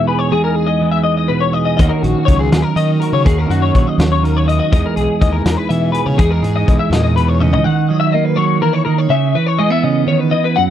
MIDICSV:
0, 0, Header, 1, 5, 480
1, 0, Start_track
1, 0, Tempo, 488202
1, 319, Time_signature, 6, 3, 24, 8
1, 10521, End_track
2, 0, Start_track
2, 0, Title_t, "Clean electric guitar"
2, 0, Program_c, 0, 27
2, 74, Note_on_c, 0, 71, 66
2, 184, Note_off_c, 0, 71, 0
2, 184, Note_on_c, 0, 73, 65
2, 311, Note_off_c, 0, 73, 0
2, 315, Note_on_c, 0, 68, 93
2, 427, Note_off_c, 0, 68, 0
2, 431, Note_on_c, 0, 70, 72
2, 538, Note_off_c, 0, 70, 0
2, 538, Note_on_c, 0, 68, 73
2, 654, Note_on_c, 0, 75, 64
2, 669, Note_off_c, 0, 68, 0
2, 895, Note_off_c, 0, 75, 0
2, 899, Note_on_c, 0, 76, 67
2, 1013, Note_off_c, 0, 76, 0
2, 1017, Note_on_c, 0, 75, 77
2, 1142, Note_off_c, 0, 75, 0
2, 1154, Note_on_c, 0, 75, 61
2, 1260, Note_on_c, 0, 71, 76
2, 1277, Note_off_c, 0, 75, 0
2, 1381, Note_on_c, 0, 73, 65
2, 1390, Note_off_c, 0, 71, 0
2, 1506, Note_off_c, 0, 73, 0
2, 1506, Note_on_c, 0, 75, 61
2, 1614, Note_off_c, 0, 75, 0
2, 1625, Note_on_c, 0, 75, 67
2, 1728, Note_off_c, 0, 75, 0
2, 1740, Note_on_c, 0, 75, 95
2, 1858, Note_on_c, 0, 70, 74
2, 1870, Note_off_c, 0, 75, 0
2, 1984, Note_off_c, 0, 70, 0
2, 1984, Note_on_c, 0, 66, 77
2, 2214, Note_on_c, 0, 73, 79
2, 2232, Note_off_c, 0, 66, 0
2, 2347, Note_off_c, 0, 73, 0
2, 2354, Note_on_c, 0, 68, 63
2, 2580, Note_off_c, 0, 68, 0
2, 2580, Note_on_c, 0, 70, 66
2, 2710, Note_off_c, 0, 70, 0
2, 2716, Note_on_c, 0, 75, 80
2, 2948, Note_on_c, 0, 70, 58
2, 2958, Note_off_c, 0, 75, 0
2, 3074, Note_off_c, 0, 70, 0
2, 3080, Note_on_c, 0, 73, 65
2, 3200, Note_off_c, 0, 73, 0
2, 3202, Note_on_c, 0, 68, 87
2, 3327, Note_off_c, 0, 68, 0
2, 3327, Note_on_c, 0, 70, 74
2, 3444, Note_off_c, 0, 70, 0
2, 3446, Note_on_c, 0, 66, 73
2, 3560, Note_on_c, 0, 73, 70
2, 3563, Note_off_c, 0, 66, 0
2, 3806, Note_off_c, 0, 73, 0
2, 3806, Note_on_c, 0, 75, 66
2, 3931, Note_off_c, 0, 75, 0
2, 3931, Note_on_c, 0, 73, 76
2, 4036, Note_off_c, 0, 73, 0
2, 4048, Note_on_c, 0, 73, 60
2, 4164, Note_off_c, 0, 73, 0
2, 4164, Note_on_c, 0, 70, 77
2, 4293, Note_off_c, 0, 70, 0
2, 4293, Note_on_c, 0, 73, 63
2, 4399, Note_off_c, 0, 73, 0
2, 4403, Note_on_c, 0, 75, 61
2, 4508, Note_off_c, 0, 75, 0
2, 4520, Note_on_c, 0, 75, 71
2, 4631, Note_off_c, 0, 75, 0
2, 4643, Note_on_c, 0, 75, 85
2, 4762, Note_off_c, 0, 75, 0
2, 4776, Note_on_c, 0, 70, 73
2, 4875, Note_off_c, 0, 70, 0
2, 4878, Note_on_c, 0, 68, 73
2, 5120, Note_off_c, 0, 68, 0
2, 5124, Note_on_c, 0, 75, 79
2, 5234, Note_on_c, 0, 70, 65
2, 5243, Note_off_c, 0, 75, 0
2, 5475, Note_off_c, 0, 70, 0
2, 5475, Note_on_c, 0, 71, 62
2, 5596, Note_on_c, 0, 76, 67
2, 5598, Note_off_c, 0, 71, 0
2, 5818, Note_off_c, 0, 76, 0
2, 5822, Note_on_c, 0, 71, 66
2, 5956, Note_off_c, 0, 71, 0
2, 5956, Note_on_c, 0, 73, 70
2, 6076, Note_on_c, 0, 68, 89
2, 6079, Note_off_c, 0, 73, 0
2, 6199, Note_off_c, 0, 68, 0
2, 6199, Note_on_c, 0, 70, 66
2, 6317, Note_off_c, 0, 70, 0
2, 6317, Note_on_c, 0, 68, 78
2, 6439, Note_off_c, 0, 68, 0
2, 6447, Note_on_c, 0, 75, 74
2, 6676, Note_off_c, 0, 75, 0
2, 6680, Note_on_c, 0, 76, 69
2, 6811, Note_off_c, 0, 76, 0
2, 6811, Note_on_c, 0, 75, 79
2, 6905, Note_off_c, 0, 75, 0
2, 6917, Note_on_c, 0, 75, 61
2, 7035, Note_off_c, 0, 75, 0
2, 7039, Note_on_c, 0, 71, 67
2, 7161, Note_off_c, 0, 71, 0
2, 7161, Note_on_c, 0, 73, 62
2, 7280, Note_off_c, 0, 73, 0
2, 7280, Note_on_c, 0, 75, 69
2, 7390, Note_off_c, 0, 75, 0
2, 7402, Note_on_c, 0, 75, 57
2, 7514, Note_off_c, 0, 75, 0
2, 7514, Note_on_c, 0, 78, 95
2, 7754, Note_off_c, 0, 78, 0
2, 7754, Note_on_c, 0, 75, 76
2, 7859, Note_off_c, 0, 75, 0
2, 7863, Note_on_c, 0, 76, 68
2, 7986, Note_on_c, 0, 75, 74
2, 7992, Note_off_c, 0, 76, 0
2, 8106, Note_off_c, 0, 75, 0
2, 8106, Note_on_c, 0, 71, 73
2, 8219, Note_off_c, 0, 71, 0
2, 8219, Note_on_c, 0, 73, 75
2, 8470, Note_off_c, 0, 73, 0
2, 8474, Note_on_c, 0, 70, 74
2, 8585, Note_off_c, 0, 70, 0
2, 8585, Note_on_c, 0, 73, 68
2, 8694, Note_off_c, 0, 73, 0
2, 8698, Note_on_c, 0, 70, 66
2, 8832, Note_off_c, 0, 70, 0
2, 8832, Note_on_c, 0, 73, 74
2, 8949, Note_on_c, 0, 76, 92
2, 8956, Note_off_c, 0, 73, 0
2, 9194, Note_off_c, 0, 76, 0
2, 9195, Note_on_c, 0, 71, 83
2, 9305, Note_off_c, 0, 71, 0
2, 9305, Note_on_c, 0, 73, 79
2, 9424, Note_on_c, 0, 75, 74
2, 9432, Note_off_c, 0, 73, 0
2, 9549, Note_off_c, 0, 75, 0
2, 9553, Note_on_c, 0, 76, 69
2, 9668, Note_off_c, 0, 76, 0
2, 9668, Note_on_c, 0, 75, 82
2, 9908, Note_on_c, 0, 73, 76
2, 9913, Note_off_c, 0, 75, 0
2, 10023, Note_off_c, 0, 73, 0
2, 10023, Note_on_c, 0, 71, 68
2, 10139, Note_on_c, 0, 75, 70
2, 10151, Note_off_c, 0, 71, 0
2, 10266, Note_on_c, 0, 71, 71
2, 10268, Note_off_c, 0, 75, 0
2, 10380, Note_on_c, 0, 78, 95
2, 10392, Note_off_c, 0, 71, 0
2, 10521, Note_off_c, 0, 78, 0
2, 10521, End_track
3, 0, Start_track
3, 0, Title_t, "Clean electric guitar"
3, 0, Program_c, 1, 27
3, 0, Note_on_c, 1, 40, 74
3, 0, Note_on_c, 1, 47, 58
3, 0, Note_on_c, 1, 52, 63
3, 0, Note_on_c, 1, 56, 59
3, 0, Note_on_c, 1, 63, 57
3, 81, Note_on_c, 1, 68, 53
3, 291, Note_off_c, 1, 68, 0
3, 294, Note_off_c, 1, 40, 0
3, 302, Note_off_c, 1, 56, 0
3, 306, Note_on_c, 1, 40, 78
3, 313, Note_on_c, 1, 56, 59
3, 316, Note_off_c, 1, 63, 0
3, 320, Note_on_c, 1, 63, 54
3, 325, Note_off_c, 1, 47, 0
3, 327, Note_on_c, 1, 68, 65
3, 785, Note_off_c, 1, 52, 0
3, 797, Note_on_c, 1, 52, 58
3, 1274, Note_on_c, 1, 47, 53
3, 1513, Note_off_c, 1, 68, 0
3, 1525, Note_on_c, 1, 68, 50
3, 1734, Note_off_c, 1, 68, 0
3, 1753, Note_off_c, 1, 40, 0
3, 1757, Note_off_c, 1, 47, 0
3, 1757, Note_off_c, 1, 56, 0
3, 1758, Note_off_c, 1, 52, 0
3, 1765, Note_on_c, 1, 51, 76
3, 1770, Note_on_c, 1, 58, 52
3, 1776, Note_off_c, 1, 63, 0
3, 1780, Note_on_c, 1, 61, 56
3, 1784, Note_on_c, 1, 66, 68
3, 2244, Note_on_c, 1, 54, 56
3, 2711, Note_off_c, 1, 51, 0
3, 2723, Note_on_c, 1, 51, 57
3, 2954, Note_off_c, 1, 66, 0
3, 2966, Note_on_c, 1, 66, 54
3, 3173, Note_off_c, 1, 51, 0
3, 3173, Note_off_c, 1, 54, 0
3, 3175, Note_off_c, 1, 58, 0
3, 3175, Note_off_c, 1, 66, 0
3, 3182, Note_off_c, 1, 61, 0
3, 3189, Note_on_c, 1, 51, 72
3, 3196, Note_on_c, 1, 58, 57
3, 3205, Note_on_c, 1, 61, 58
3, 3213, Note_on_c, 1, 66, 67
3, 3683, Note_on_c, 1, 54, 61
3, 4144, Note_off_c, 1, 51, 0
3, 4155, Note_on_c, 1, 51, 63
3, 4381, Note_off_c, 1, 66, 0
3, 4385, Note_on_c, 1, 64, 60
3, 4512, Note_off_c, 1, 64, 0
3, 4512, Note_on_c, 1, 66, 45
3, 4610, Note_off_c, 1, 51, 0
3, 4610, Note_off_c, 1, 58, 0
3, 4613, Note_off_c, 1, 54, 0
3, 4615, Note_off_c, 1, 61, 0
3, 4634, Note_on_c, 1, 40, 78
3, 4636, Note_off_c, 1, 66, 0
3, 4643, Note_on_c, 1, 56, 56
3, 4649, Note_on_c, 1, 63, 59
3, 4659, Note_on_c, 1, 68, 58
3, 5121, Note_on_c, 1, 52, 61
3, 5602, Note_on_c, 1, 47, 59
3, 5825, Note_off_c, 1, 68, 0
3, 5837, Note_on_c, 1, 68, 51
3, 6051, Note_off_c, 1, 68, 0
3, 6065, Note_off_c, 1, 40, 0
3, 6070, Note_off_c, 1, 56, 0
3, 6077, Note_on_c, 1, 40, 74
3, 6082, Note_off_c, 1, 47, 0
3, 6082, Note_on_c, 1, 56, 62
3, 6088, Note_off_c, 1, 63, 0
3, 6092, Note_on_c, 1, 63, 62
3, 6098, Note_on_c, 1, 68, 67
3, 6541, Note_off_c, 1, 52, 0
3, 6553, Note_on_c, 1, 52, 58
3, 6799, Note_off_c, 1, 40, 0
3, 6803, Note_on_c, 1, 46, 64
3, 7042, Note_off_c, 1, 46, 0
3, 7051, Note_on_c, 1, 47, 55
3, 7272, Note_off_c, 1, 47, 0
3, 7276, Note_on_c, 1, 49, 53
3, 7498, Note_off_c, 1, 63, 0
3, 7501, Note_off_c, 1, 68, 0
3, 7517, Note_off_c, 1, 52, 0
3, 7518, Note_off_c, 1, 49, 0
3, 7521, Note_off_c, 1, 56, 0
3, 7531, Note_on_c, 1, 51, 79
3, 7773, Note_on_c, 1, 54, 64
3, 8007, Note_on_c, 1, 58, 65
3, 8219, Note_off_c, 1, 54, 0
3, 8231, Note_on_c, 1, 54, 70
3, 8467, Note_off_c, 1, 54, 0
3, 8471, Note_on_c, 1, 52, 62
3, 8700, Note_off_c, 1, 51, 0
3, 8712, Note_on_c, 1, 51, 61
3, 8715, Note_off_c, 1, 52, 0
3, 8934, Note_off_c, 1, 58, 0
3, 8936, Note_off_c, 1, 51, 0
3, 8940, Note_on_c, 1, 49, 77
3, 9190, Note_off_c, 1, 49, 0
3, 9192, Note_on_c, 1, 52, 59
3, 9429, Note_on_c, 1, 56, 64
3, 9541, Note_off_c, 1, 56, 0
3, 9541, Note_on_c, 1, 59, 46
3, 9670, Note_on_c, 1, 49, 69
3, 9895, Note_off_c, 1, 49, 0
3, 9899, Note_on_c, 1, 51, 66
3, 10136, Note_off_c, 1, 52, 0
3, 10140, Note_on_c, 1, 52, 59
3, 10148, Note_off_c, 1, 51, 0
3, 10389, Note_off_c, 1, 52, 0
3, 10389, Note_off_c, 1, 59, 0
3, 10401, Note_on_c, 1, 42, 77
3, 10521, Note_off_c, 1, 42, 0
3, 10521, End_track
4, 0, Start_track
4, 0, Title_t, "Fingered electric bass"
4, 0, Program_c, 2, 33
4, 1766, Note_on_c, 2, 39, 85
4, 1863, Note_off_c, 2, 39, 0
4, 1996, Note_on_c, 2, 34, 83
4, 2098, Note_off_c, 2, 34, 0
4, 2241, Note_on_c, 2, 37, 80
4, 2441, Note_off_c, 2, 37, 0
4, 2479, Note_on_c, 2, 39, 93
4, 2579, Note_off_c, 2, 39, 0
4, 2712, Note_on_c, 2, 51, 78
4, 2916, Note_off_c, 2, 51, 0
4, 3074, Note_on_c, 2, 49, 71
4, 3177, Note_off_c, 2, 49, 0
4, 3202, Note_on_c, 2, 39, 88
4, 3401, Note_off_c, 2, 39, 0
4, 3436, Note_on_c, 2, 42, 81
4, 3638, Note_off_c, 2, 42, 0
4, 3683, Note_on_c, 2, 34, 71
4, 3782, Note_off_c, 2, 34, 0
4, 3910, Note_on_c, 2, 39, 87
4, 4515, Note_off_c, 2, 39, 0
4, 4645, Note_on_c, 2, 40, 95
4, 4744, Note_off_c, 2, 40, 0
4, 4884, Note_on_c, 2, 35, 72
4, 4983, Note_off_c, 2, 35, 0
4, 5126, Note_on_c, 2, 39, 76
4, 5324, Note_off_c, 2, 39, 0
4, 5363, Note_on_c, 2, 40, 90
4, 5462, Note_off_c, 2, 40, 0
4, 5605, Note_on_c, 2, 52, 83
4, 5803, Note_off_c, 2, 52, 0
4, 5960, Note_on_c, 2, 49, 73
4, 6061, Note_off_c, 2, 49, 0
4, 6085, Note_on_c, 2, 40, 89
4, 6284, Note_off_c, 2, 40, 0
4, 6312, Note_on_c, 2, 44, 80
4, 6516, Note_off_c, 2, 44, 0
4, 6566, Note_on_c, 2, 35, 69
4, 6664, Note_off_c, 2, 35, 0
4, 6783, Note_on_c, 2, 40, 90
4, 7390, Note_off_c, 2, 40, 0
4, 10521, End_track
5, 0, Start_track
5, 0, Title_t, "Drums"
5, 1762, Note_on_c, 9, 36, 86
5, 1763, Note_on_c, 9, 42, 78
5, 1861, Note_off_c, 9, 36, 0
5, 1861, Note_off_c, 9, 42, 0
5, 2005, Note_on_c, 9, 42, 61
5, 2103, Note_off_c, 9, 42, 0
5, 2243, Note_on_c, 9, 36, 73
5, 2248, Note_on_c, 9, 42, 62
5, 2342, Note_off_c, 9, 36, 0
5, 2346, Note_off_c, 9, 42, 0
5, 2480, Note_on_c, 9, 42, 76
5, 2481, Note_on_c, 9, 38, 103
5, 2579, Note_off_c, 9, 42, 0
5, 2580, Note_off_c, 9, 38, 0
5, 2722, Note_on_c, 9, 42, 59
5, 2820, Note_off_c, 9, 42, 0
5, 2964, Note_on_c, 9, 42, 58
5, 3062, Note_off_c, 9, 42, 0
5, 3205, Note_on_c, 9, 36, 92
5, 3210, Note_on_c, 9, 42, 63
5, 3303, Note_off_c, 9, 36, 0
5, 3309, Note_off_c, 9, 42, 0
5, 3450, Note_on_c, 9, 42, 56
5, 3548, Note_off_c, 9, 42, 0
5, 3687, Note_on_c, 9, 36, 77
5, 3693, Note_on_c, 9, 42, 57
5, 3786, Note_off_c, 9, 36, 0
5, 3791, Note_off_c, 9, 42, 0
5, 3929, Note_on_c, 9, 42, 68
5, 3930, Note_on_c, 9, 38, 106
5, 4028, Note_off_c, 9, 42, 0
5, 4029, Note_off_c, 9, 38, 0
5, 4179, Note_on_c, 9, 42, 50
5, 4277, Note_off_c, 9, 42, 0
5, 4415, Note_on_c, 9, 42, 57
5, 4513, Note_off_c, 9, 42, 0
5, 4647, Note_on_c, 9, 36, 90
5, 4648, Note_on_c, 9, 42, 64
5, 4745, Note_off_c, 9, 36, 0
5, 4747, Note_off_c, 9, 42, 0
5, 4885, Note_on_c, 9, 42, 56
5, 4984, Note_off_c, 9, 42, 0
5, 5128, Note_on_c, 9, 36, 75
5, 5131, Note_on_c, 9, 42, 65
5, 5226, Note_off_c, 9, 36, 0
5, 5229, Note_off_c, 9, 42, 0
5, 5365, Note_on_c, 9, 42, 82
5, 5366, Note_on_c, 9, 38, 95
5, 5463, Note_off_c, 9, 42, 0
5, 5464, Note_off_c, 9, 38, 0
5, 5608, Note_on_c, 9, 42, 58
5, 5706, Note_off_c, 9, 42, 0
5, 5845, Note_on_c, 9, 42, 63
5, 5943, Note_off_c, 9, 42, 0
5, 6082, Note_on_c, 9, 42, 73
5, 6086, Note_on_c, 9, 36, 91
5, 6181, Note_off_c, 9, 42, 0
5, 6185, Note_off_c, 9, 36, 0
5, 6332, Note_on_c, 9, 42, 64
5, 6431, Note_off_c, 9, 42, 0
5, 6568, Note_on_c, 9, 36, 74
5, 6571, Note_on_c, 9, 42, 61
5, 6667, Note_off_c, 9, 36, 0
5, 6669, Note_off_c, 9, 42, 0
5, 6809, Note_on_c, 9, 42, 83
5, 6810, Note_on_c, 9, 38, 102
5, 6907, Note_off_c, 9, 42, 0
5, 6908, Note_off_c, 9, 38, 0
5, 7053, Note_on_c, 9, 42, 53
5, 7151, Note_off_c, 9, 42, 0
5, 7288, Note_on_c, 9, 48, 58
5, 7387, Note_off_c, 9, 48, 0
5, 7408, Note_on_c, 9, 43, 75
5, 7506, Note_off_c, 9, 43, 0
5, 10521, End_track
0, 0, End_of_file